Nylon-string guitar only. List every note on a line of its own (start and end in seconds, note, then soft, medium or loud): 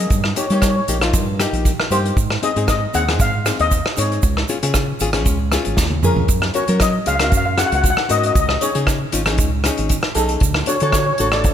0.00 0.11 A#3 medium
0.00 0.11 C#4 medium
0.00 0.11 G#4 medium
0.36 0.45 A#3 medium
0.36 0.45 D#4 medium
0.36 0.45 G4 medium
0.52 0.74 A#3 medium
0.52 0.74 D#4 medium
0.52 0.74 G4 medium
0.89 0.97 A#3 medium
0.89 0.97 D#4 medium
0.89 0.97 G4 medium
1.02 1.25 A#3 medium
1.02 1.25 D#4 medium
1.02 1.25 F4 medium
1.40 1.71 A#3 medium
1.40 1.71 D#4 medium
1.40 1.71 G4 medium
1.91 2.17 A#3 medium
1.91 2.17 D#4 medium
1.91 2.17 G4 medium
2.42 2.51 C4 medium
2.42 2.51 D#4 medium
2.42 2.51 G#4 medium
2.57 2.80 C4 medium
2.57 2.80 D#4 medium
2.57 2.80 G#4 medium
2.94 3.03 C4 medium
2.94 3.03 D#4 medium
2.94 3.03 G#4 medium
3.08 3.31 C4 medium
3.08 3.31 D#4 medium
3.08 3.31 G#4 medium
3.46 3.77 C4 medium
3.46 3.77 D#4 medium
3.46 3.77 G#4 medium
3.97 4.23 C4 medium
3.97 4.23 D#4 medium
3.97 4.23 G#4 medium
4.49 4.57 C#4 medium
4.49 4.58 F4 medium
4.49 4.58 G#4 medium
4.63 4.86 C#4 medium
4.63 4.86 F4 medium
4.63 4.86 G#4 medium
5.01 5.09 C#4 medium
5.01 5.09 F4 medium
5.01 5.09 G#4 medium
5.14 5.37 C#4 medium
5.14 5.37 F4 medium
5.14 5.37 G#4 medium
5.53 5.84 C#4 medium
5.53 5.84 F4 medium
5.53 5.84 G#4 medium
6.03 6.29 C#4 medium
6.03 6.29 F4 medium
6.03 6.30 G#4 medium
6.54 6.63 C#4 medium
6.54 6.63 F#4 medium
6.54 6.63 A#4 medium
6.69 6.92 C#4 medium
6.69 6.92 F#4 medium
6.69 6.92 A#4 medium
7.06 7.15 C#4 medium
7.06 7.15 F#4 medium
7.06 7.15 G#4 medium
7.19 7.43 C#4 medium
7.19 7.43 F#4 medium
7.19 7.43 A#4 medium
7.57 7.89 C#4 medium
7.57 7.89 F#4 medium
7.57 7.89 G#4 medium
8.09 8.35 C#4 medium
8.09 8.35 F#4 medium
8.09 8.35 A#4 medium
8.62 8.70 C#4 medium
8.62 8.70 D#4 medium
8.62 8.70 G#4 medium
8.75 8.98 C#4 medium
8.75 8.98 D#4 medium
8.75 8.98 G#4 medium
9.13 9.21 C#4 medium
9.13 9.21 D#4 medium
9.13 9.21 F4 medium
9.27 9.50 C#4 medium
9.27 9.50 D#4 medium
9.27 9.50 G#4 medium
9.65 9.96 C#4 medium
9.65 9.96 D#4 medium
9.65 9.96 G#4 medium
10.16 10.42 C#4 medium
10.16 10.42 D#4 medium
10.16 10.42 G#4 medium
10.68 10.76 D4 medium
10.68 10.76 F#4 medium
10.68 10.76 A4 medium
10.82 11.05 D4 medium
10.82 11.05 F#4 medium
10.82 11.05 A4 medium
11.20 11.28 D4 medium
11.20 11.28 F#4 medium
11.20 11.28 A4 medium
11.33 11.54 D4 medium
11.33 11.54 F#4 medium
11.33 11.54 A4 medium